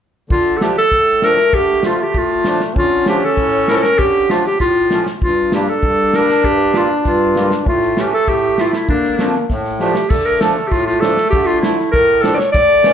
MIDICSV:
0, 0, Header, 1, 5, 480
1, 0, Start_track
1, 0, Key_signature, -1, "minor"
1, 0, Tempo, 614125
1, 238, Time_signature, 2, 2, 24, 8
1, 5997, Tempo, 608519
1, 10146, End_track
2, 0, Start_track
2, 0, Title_t, "Clarinet"
2, 0, Program_c, 0, 71
2, 247, Note_on_c, 0, 65, 93
2, 447, Note_on_c, 0, 69, 62
2, 459, Note_off_c, 0, 65, 0
2, 494, Note_on_c, 0, 67, 76
2, 506, Note_off_c, 0, 69, 0
2, 606, Note_off_c, 0, 67, 0
2, 611, Note_on_c, 0, 69, 112
2, 973, Note_on_c, 0, 70, 106
2, 985, Note_off_c, 0, 69, 0
2, 1207, Note_on_c, 0, 67, 100
2, 1219, Note_off_c, 0, 70, 0
2, 1444, Note_off_c, 0, 67, 0
2, 1454, Note_on_c, 0, 65, 72
2, 1584, Note_on_c, 0, 67, 83
2, 1596, Note_off_c, 0, 65, 0
2, 1697, Note_on_c, 0, 65, 101
2, 1709, Note_off_c, 0, 67, 0
2, 2049, Note_off_c, 0, 65, 0
2, 2178, Note_on_c, 0, 65, 96
2, 2393, Note_off_c, 0, 65, 0
2, 2410, Note_on_c, 0, 67, 86
2, 2542, Note_on_c, 0, 69, 100
2, 2553, Note_off_c, 0, 67, 0
2, 2884, Note_on_c, 0, 70, 102
2, 2896, Note_off_c, 0, 69, 0
2, 2931, Note_on_c, 0, 69, 82
2, 2943, Note_off_c, 0, 70, 0
2, 2988, Note_on_c, 0, 70, 106
2, 3000, Note_off_c, 0, 69, 0
2, 3117, Note_on_c, 0, 67, 110
2, 3129, Note_off_c, 0, 70, 0
2, 3365, Note_on_c, 0, 65, 83
2, 3377, Note_off_c, 0, 67, 0
2, 3483, Note_off_c, 0, 65, 0
2, 3488, Note_on_c, 0, 67, 85
2, 3596, Note_off_c, 0, 67, 0
2, 3600, Note_on_c, 0, 65, 95
2, 3935, Note_off_c, 0, 65, 0
2, 4086, Note_on_c, 0, 65, 90
2, 4307, Note_off_c, 0, 65, 0
2, 4332, Note_on_c, 0, 67, 71
2, 4451, Note_on_c, 0, 69, 101
2, 4463, Note_off_c, 0, 67, 0
2, 4808, Note_on_c, 0, 70, 94
2, 4820, Note_off_c, 0, 69, 0
2, 5044, Note_on_c, 0, 67, 105
2, 5056, Note_off_c, 0, 70, 0
2, 5287, Note_on_c, 0, 65, 75
2, 5299, Note_off_c, 0, 67, 0
2, 5402, Note_off_c, 0, 65, 0
2, 5524, Note_on_c, 0, 65, 84
2, 5855, Note_off_c, 0, 65, 0
2, 6007, Note_on_c, 0, 65, 83
2, 6253, Note_on_c, 0, 67, 68
2, 6265, Note_off_c, 0, 65, 0
2, 6362, Note_off_c, 0, 67, 0
2, 6367, Note_on_c, 0, 69, 92
2, 6484, Note_on_c, 0, 67, 94
2, 6496, Note_off_c, 0, 69, 0
2, 6730, Note_on_c, 0, 65, 81
2, 6741, Note_off_c, 0, 67, 0
2, 6834, Note_off_c, 0, 65, 0
2, 6838, Note_on_c, 0, 64, 74
2, 6950, Note_off_c, 0, 64, 0
2, 6959, Note_on_c, 0, 62, 74
2, 7409, Note_off_c, 0, 62, 0
2, 7675, Note_on_c, 0, 67, 82
2, 7912, Note_on_c, 0, 69, 99
2, 7924, Note_off_c, 0, 67, 0
2, 8035, Note_on_c, 0, 70, 88
2, 8047, Note_off_c, 0, 69, 0
2, 8153, Note_on_c, 0, 69, 72
2, 8165, Note_off_c, 0, 70, 0
2, 8366, Note_on_c, 0, 67, 72
2, 8378, Note_off_c, 0, 69, 0
2, 8394, Note_on_c, 0, 65, 89
2, 8406, Note_off_c, 0, 67, 0
2, 8510, Note_off_c, 0, 65, 0
2, 8515, Note_on_c, 0, 65, 84
2, 8624, Note_on_c, 0, 69, 92
2, 8636, Note_off_c, 0, 65, 0
2, 8856, Note_off_c, 0, 69, 0
2, 8860, Note_on_c, 0, 67, 102
2, 8982, Note_on_c, 0, 65, 90
2, 8994, Note_off_c, 0, 67, 0
2, 9096, Note_off_c, 0, 65, 0
2, 9101, Note_on_c, 0, 64, 74
2, 9333, Note_off_c, 0, 64, 0
2, 9345, Note_on_c, 0, 70, 105
2, 9576, Note_on_c, 0, 69, 92
2, 9588, Note_off_c, 0, 70, 0
2, 9679, Note_on_c, 0, 74, 83
2, 9691, Note_off_c, 0, 69, 0
2, 9694, Note_on_c, 0, 73, 82
2, 9706, Note_off_c, 0, 74, 0
2, 9817, Note_off_c, 0, 73, 0
2, 9821, Note_on_c, 0, 74, 113
2, 10146, Note_off_c, 0, 74, 0
2, 10146, End_track
3, 0, Start_track
3, 0, Title_t, "Trombone"
3, 0, Program_c, 1, 57
3, 236, Note_on_c, 1, 57, 102
3, 2152, Note_on_c, 1, 61, 126
3, 2164, Note_off_c, 1, 57, 0
3, 3837, Note_off_c, 1, 61, 0
3, 4080, Note_on_c, 1, 62, 127
3, 5994, Note_on_c, 1, 57, 104
3, 6006, Note_off_c, 1, 62, 0
3, 6953, Note_on_c, 1, 58, 98
3, 6965, Note_off_c, 1, 57, 0
3, 7430, Note_off_c, 1, 58, 0
3, 7435, Note_on_c, 1, 57, 70
3, 7887, Note_off_c, 1, 57, 0
3, 7911, Note_on_c, 1, 57, 107
3, 9705, Note_off_c, 1, 57, 0
3, 9839, Note_on_c, 1, 57, 116
3, 10146, Note_off_c, 1, 57, 0
3, 10146, End_track
4, 0, Start_track
4, 0, Title_t, "Accordion"
4, 0, Program_c, 2, 21
4, 231, Note_on_c, 2, 50, 72
4, 469, Note_on_c, 2, 53, 58
4, 472, Note_on_c, 2, 57, 55
4, 479, Note_on_c, 2, 62, 69
4, 592, Note_off_c, 2, 50, 0
4, 594, Note_off_c, 2, 53, 0
4, 596, Note_off_c, 2, 57, 0
4, 599, Note_off_c, 2, 62, 0
4, 707, Note_on_c, 2, 45, 63
4, 949, Note_on_c, 2, 53, 59
4, 953, Note_on_c, 2, 57, 57
4, 961, Note_on_c, 2, 62, 66
4, 1070, Note_off_c, 2, 45, 0
4, 1074, Note_off_c, 2, 53, 0
4, 1076, Note_off_c, 2, 57, 0
4, 1080, Note_off_c, 2, 62, 0
4, 1198, Note_on_c, 2, 50, 70
4, 1430, Note_on_c, 2, 53, 66
4, 1436, Note_on_c, 2, 57, 56
4, 1440, Note_on_c, 2, 65, 64
4, 1555, Note_off_c, 2, 53, 0
4, 1557, Note_off_c, 2, 50, 0
4, 1558, Note_off_c, 2, 57, 0
4, 1560, Note_off_c, 2, 65, 0
4, 1679, Note_on_c, 2, 45, 68
4, 1910, Note_on_c, 2, 53, 60
4, 1919, Note_on_c, 2, 57, 57
4, 1921, Note_on_c, 2, 62, 64
4, 2035, Note_off_c, 2, 53, 0
4, 2037, Note_off_c, 2, 45, 0
4, 2040, Note_off_c, 2, 57, 0
4, 2041, Note_off_c, 2, 62, 0
4, 2163, Note_on_c, 2, 50, 77
4, 2399, Note_on_c, 2, 53, 61
4, 2405, Note_on_c, 2, 57, 59
4, 2412, Note_on_c, 2, 62, 68
4, 2520, Note_off_c, 2, 50, 0
4, 2520, Note_off_c, 2, 53, 0
4, 2523, Note_off_c, 2, 57, 0
4, 2527, Note_off_c, 2, 62, 0
4, 2642, Note_on_c, 2, 45, 73
4, 2880, Note_on_c, 2, 53, 64
4, 2886, Note_on_c, 2, 57, 59
4, 2889, Note_on_c, 2, 64, 72
4, 2999, Note_off_c, 2, 45, 0
4, 3001, Note_off_c, 2, 53, 0
4, 3004, Note_off_c, 2, 57, 0
4, 3005, Note_off_c, 2, 64, 0
4, 3130, Note_on_c, 2, 50, 76
4, 3350, Note_on_c, 2, 53, 58
4, 3360, Note_on_c, 2, 57, 54
4, 3366, Note_on_c, 2, 62, 69
4, 3476, Note_off_c, 2, 53, 0
4, 3481, Note_off_c, 2, 57, 0
4, 3483, Note_off_c, 2, 50, 0
4, 3484, Note_off_c, 2, 62, 0
4, 3590, Note_on_c, 2, 45, 68
4, 3835, Note_on_c, 2, 53, 62
4, 3838, Note_on_c, 2, 57, 56
4, 3844, Note_on_c, 2, 61, 66
4, 3952, Note_off_c, 2, 45, 0
4, 3958, Note_off_c, 2, 53, 0
4, 3959, Note_off_c, 2, 57, 0
4, 3963, Note_off_c, 2, 61, 0
4, 4085, Note_on_c, 2, 43, 63
4, 4321, Note_on_c, 2, 55, 60
4, 4326, Note_on_c, 2, 58, 53
4, 4335, Note_on_c, 2, 62, 74
4, 4440, Note_off_c, 2, 43, 0
4, 4441, Note_off_c, 2, 55, 0
4, 4443, Note_off_c, 2, 58, 0
4, 4448, Note_off_c, 2, 62, 0
4, 4564, Note_on_c, 2, 43, 65
4, 4803, Note_on_c, 2, 55, 63
4, 4806, Note_on_c, 2, 58, 58
4, 4815, Note_on_c, 2, 62, 60
4, 4919, Note_off_c, 2, 43, 0
4, 4921, Note_off_c, 2, 55, 0
4, 4922, Note_off_c, 2, 58, 0
4, 4927, Note_off_c, 2, 62, 0
4, 5043, Note_on_c, 2, 43, 73
4, 5262, Note_on_c, 2, 55, 63
4, 5270, Note_on_c, 2, 58, 59
4, 5279, Note_on_c, 2, 65, 66
4, 5390, Note_off_c, 2, 55, 0
4, 5394, Note_off_c, 2, 58, 0
4, 5397, Note_off_c, 2, 43, 0
4, 5398, Note_off_c, 2, 65, 0
4, 5511, Note_on_c, 2, 43, 73
4, 5751, Note_on_c, 2, 55, 66
4, 5755, Note_on_c, 2, 58, 61
4, 5762, Note_on_c, 2, 65, 74
4, 5870, Note_off_c, 2, 43, 0
4, 5873, Note_off_c, 2, 55, 0
4, 5875, Note_off_c, 2, 58, 0
4, 5879, Note_off_c, 2, 65, 0
4, 5996, Note_on_c, 2, 45, 74
4, 6232, Note_on_c, 2, 52, 59
4, 6239, Note_on_c, 2, 57, 57
4, 6241, Note_on_c, 2, 61, 67
4, 6354, Note_off_c, 2, 45, 0
4, 6355, Note_off_c, 2, 52, 0
4, 6358, Note_off_c, 2, 57, 0
4, 6359, Note_off_c, 2, 61, 0
4, 6474, Note_on_c, 2, 45, 77
4, 6712, Note_on_c, 2, 52, 65
4, 6721, Note_on_c, 2, 57, 57
4, 6726, Note_on_c, 2, 64, 62
4, 6834, Note_off_c, 2, 45, 0
4, 6835, Note_off_c, 2, 52, 0
4, 6840, Note_off_c, 2, 57, 0
4, 6843, Note_off_c, 2, 64, 0
4, 6958, Note_on_c, 2, 50, 74
4, 7185, Note_on_c, 2, 53, 54
4, 7192, Note_on_c, 2, 57, 55
4, 7198, Note_on_c, 2, 62, 66
4, 7313, Note_off_c, 2, 53, 0
4, 7316, Note_off_c, 2, 50, 0
4, 7316, Note_off_c, 2, 57, 0
4, 7319, Note_off_c, 2, 62, 0
4, 7440, Note_on_c, 2, 45, 76
4, 7671, Note_on_c, 2, 53, 73
4, 7676, Note_on_c, 2, 57, 68
4, 7680, Note_on_c, 2, 62, 76
4, 7796, Note_off_c, 2, 53, 0
4, 7798, Note_off_c, 2, 45, 0
4, 7798, Note_off_c, 2, 57, 0
4, 7800, Note_off_c, 2, 62, 0
4, 7921, Note_on_c, 2, 50, 74
4, 8147, Note_on_c, 2, 53, 70
4, 8153, Note_on_c, 2, 57, 63
4, 8161, Note_on_c, 2, 62, 63
4, 8274, Note_off_c, 2, 53, 0
4, 8277, Note_off_c, 2, 57, 0
4, 8278, Note_off_c, 2, 50, 0
4, 8281, Note_off_c, 2, 62, 0
4, 8392, Note_on_c, 2, 45, 66
4, 8632, Note_on_c, 2, 53, 64
4, 8637, Note_on_c, 2, 57, 59
4, 8640, Note_on_c, 2, 62, 68
4, 8753, Note_off_c, 2, 45, 0
4, 8756, Note_off_c, 2, 53, 0
4, 8759, Note_off_c, 2, 57, 0
4, 8760, Note_off_c, 2, 62, 0
4, 8875, Note_on_c, 2, 50, 76
4, 9111, Note_on_c, 2, 53, 68
4, 9116, Note_on_c, 2, 57, 61
4, 9123, Note_on_c, 2, 64, 61
4, 9234, Note_off_c, 2, 50, 0
4, 9235, Note_off_c, 2, 53, 0
4, 9238, Note_off_c, 2, 57, 0
4, 9241, Note_off_c, 2, 64, 0
4, 9354, Note_on_c, 2, 45, 71
4, 9584, Note_on_c, 2, 53, 64
4, 9592, Note_on_c, 2, 57, 65
4, 9601, Note_on_c, 2, 62, 79
4, 9711, Note_off_c, 2, 53, 0
4, 9713, Note_off_c, 2, 45, 0
4, 9715, Note_off_c, 2, 57, 0
4, 9720, Note_off_c, 2, 62, 0
4, 9829, Note_on_c, 2, 45, 69
4, 10060, Note_on_c, 2, 52, 64
4, 10068, Note_on_c, 2, 57, 66
4, 10072, Note_on_c, 2, 61, 64
4, 10146, Note_off_c, 2, 45, 0
4, 10146, Note_off_c, 2, 52, 0
4, 10146, Note_off_c, 2, 57, 0
4, 10146, Note_off_c, 2, 61, 0
4, 10146, End_track
5, 0, Start_track
5, 0, Title_t, "Drums"
5, 238, Note_on_c, 9, 36, 80
5, 316, Note_off_c, 9, 36, 0
5, 479, Note_on_c, 9, 38, 85
5, 557, Note_off_c, 9, 38, 0
5, 595, Note_on_c, 9, 38, 20
5, 673, Note_off_c, 9, 38, 0
5, 716, Note_on_c, 9, 36, 60
5, 794, Note_off_c, 9, 36, 0
5, 954, Note_on_c, 9, 38, 69
5, 1032, Note_off_c, 9, 38, 0
5, 1071, Note_on_c, 9, 38, 55
5, 1149, Note_off_c, 9, 38, 0
5, 1196, Note_on_c, 9, 36, 80
5, 1275, Note_off_c, 9, 36, 0
5, 1314, Note_on_c, 9, 38, 20
5, 1392, Note_off_c, 9, 38, 0
5, 1429, Note_on_c, 9, 38, 85
5, 1508, Note_off_c, 9, 38, 0
5, 1676, Note_on_c, 9, 36, 58
5, 1754, Note_off_c, 9, 36, 0
5, 1910, Note_on_c, 9, 38, 78
5, 1988, Note_off_c, 9, 38, 0
5, 2034, Note_on_c, 9, 38, 65
5, 2112, Note_off_c, 9, 38, 0
5, 2158, Note_on_c, 9, 36, 82
5, 2236, Note_off_c, 9, 36, 0
5, 2392, Note_on_c, 9, 38, 87
5, 2470, Note_off_c, 9, 38, 0
5, 2632, Note_on_c, 9, 38, 25
5, 2636, Note_on_c, 9, 36, 58
5, 2710, Note_off_c, 9, 38, 0
5, 2714, Note_off_c, 9, 36, 0
5, 2875, Note_on_c, 9, 38, 75
5, 2953, Note_off_c, 9, 38, 0
5, 2998, Note_on_c, 9, 38, 61
5, 3076, Note_off_c, 9, 38, 0
5, 3118, Note_on_c, 9, 36, 75
5, 3196, Note_off_c, 9, 36, 0
5, 3358, Note_on_c, 9, 38, 82
5, 3436, Note_off_c, 9, 38, 0
5, 3477, Note_on_c, 9, 38, 23
5, 3555, Note_off_c, 9, 38, 0
5, 3594, Note_on_c, 9, 38, 23
5, 3596, Note_on_c, 9, 36, 61
5, 3672, Note_off_c, 9, 38, 0
5, 3674, Note_off_c, 9, 36, 0
5, 3834, Note_on_c, 9, 38, 76
5, 3912, Note_off_c, 9, 38, 0
5, 3957, Note_on_c, 9, 38, 57
5, 4035, Note_off_c, 9, 38, 0
5, 4078, Note_on_c, 9, 36, 76
5, 4156, Note_off_c, 9, 36, 0
5, 4315, Note_on_c, 9, 38, 85
5, 4393, Note_off_c, 9, 38, 0
5, 4437, Note_on_c, 9, 38, 22
5, 4515, Note_off_c, 9, 38, 0
5, 4555, Note_on_c, 9, 36, 68
5, 4633, Note_off_c, 9, 36, 0
5, 4794, Note_on_c, 9, 38, 71
5, 4873, Note_off_c, 9, 38, 0
5, 4918, Note_on_c, 9, 38, 60
5, 4996, Note_off_c, 9, 38, 0
5, 5035, Note_on_c, 9, 36, 70
5, 5113, Note_off_c, 9, 36, 0
5, 5152, Note_on_c, 9, 38, 20
5, 5230, Note_off_c, 9, 38, 0
5, 5267, Note_on_c, 9, 38, 89
5, 5345, Note_off_c, 9, 38, 0
5, 5510, Note_on_c, 9, 38, 26
5, 5513, Note_on_c, 9, 36, 65
5, 5588, Note_off_c, 9, 38, 0
5, 5591, Note_off_c, 9, 36, 0
5, 5750, Note_on_c, 9, 38, 70
5, 5828, Note_off_c, 9, 38, 0
5, 5867, Note_on_c, 9, 38, 71
5, 5945, Note_off_c, 9, 38, 0
5, 5990, Note_on_c, 9, 36, 77
5, 6069, Note_off_c, 9, 36, 0
5, 6111, Note_on_c, 9, 38, 20
5, 6190, Note_off_c, 9, 38, 0
5, 6231, Note_on_c, 9, 38, 82
5, 6310, Note_off_c, 9, 38, 0
5, 6473, Note_on_c, 9, 36, 59
5, 6552, Note_off_c, 9, 36, 0
5, 6712, Note_on_c, 9, 38, 69
5, 6791, Note_off_c, 9, 38, 0
5, 6831, Note_on_c, 9, 38, 65
5, 6909, Note_off_c, 9, 38, 0
5, 6954, Note_on_c, 9, 36, 81
5, 7033, Note_off_c, 9, 36, 0
5, 7072, Note_on_c, 9, 38, 22
5, 7151, Note_off_c, 9, 38, 0
5, 7192, Note_on_c, 9, 38, 83
5, 7271, Note_off_c, 9, 38, 0
5, 7316, Note_on_c, 9, 38, 22
5, 7395, Note_off_c, 9, 38, 0
5, 7436, Note_on_c, 9, 36, 59
5, 7436, Note_on_c, 9, 38, 26
5, 7515, Note_off_c, 9, 36, 0
5, 7515, Note_off_c, 9, 38, 0
5, 7554, Note_on_c, 9, 38, 21
5, 7633, Note_off_c, 9, 38, 0
5, 7674, Note_on_c, 9, 38, 38
5, 7753, Note_off_c, 9, 38, 0
5, 7789, Note_on_c, 9, 38, 70
5, 7868, Note_off_c, 9, 38, 0
5, 7911, Note_on_c, 9, 49, 73
5, 7916, Note_on_c, 9, 36, 86
5, 7990, Note_off_c, 9, 49, 0
5, 7995, Note_off_c, 9, 36, 0
5, 8155, Note_on_c, 9, 38, 94
5, 8234, Note_off_c, 9, 38, 0
5, 8276, Note_on_c, 9, 38, 21
5, 8355, Note_off_c, 9, 38, 0
5, 8396, Note_on_c, 9, 38, 25
5, 8398, Note_on_c, 9, 36, 63
5, 8475, Note_off_c, 9, 38, 0
5, 8477, Note_off_c, 9, 36, 0
5, 8522, Note_on_c, 9, 38, 25
5, 8601, Note_off_c, 9, 38, 0
5, 8639, Note_on_c, 9, 38, 81
5, 8718, Note_off_c, 9, 38, 0
5, 8754, Note_on_c, 9, 38, 68
5, 8833, Note_off_c, 9, 38, 0
5, 8881, Note_on_c, 9, 36, 81
5, 8959, Note_off_c, 9, 36, 0
5, 9120, Note_on_c, 9, 38, 92
5, 9199, Note_off_c, 9, 38, 0
5, 9243, Note_on_c, 9, 38, 23
5, 9322, Note_off_c, 9, 38, 0
5, 9360, Note_on_c, 9, 36, 71
5, 9361, Note_on_c, 9, 38, 25
5, 9439, Note_off_c, 9, 36, 0
5, 9440, Note_off_c, 9, 38, 0
5, 9599, Note_on_c, 9, 38, 78
5, 9678, Note_off_c, 9, 38, 0
5, 9720, Note_on_c, 9, 38, 65
5, 9799, Note_off_c, 9, 38, 0
5, 9840, Note_on_c, 9, 36, 85
5, 9840, Note_on_c, 9, 38, 27
5, 9919, Note_off_c, 9, 36, 0
5, 9919, Note_off_c, 9, 38, 0
5, 10074, Note_on_c, 9, 38, 87
5, 10146, Note_off_c, 9, 38, 0
5, 10146, End_track
0, 0, End_of_file